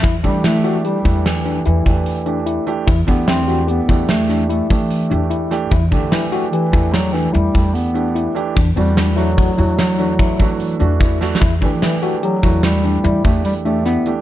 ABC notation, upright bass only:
X:1
M:7/4
L:1/8
Q:1/4=148
K:Dmix
V:1 name="Upright bass" clef=bass
E,, E,4 E,,3 E,, E,,4 z | E,, E,,4 E,,4 E,2 E,,3 | E,, E,4 E,,3 E,, E,,4 z | E,, E,,4 E,,4 E,2 E,,3 |
E,, E,4 E,,3 E,, E,,4 z |]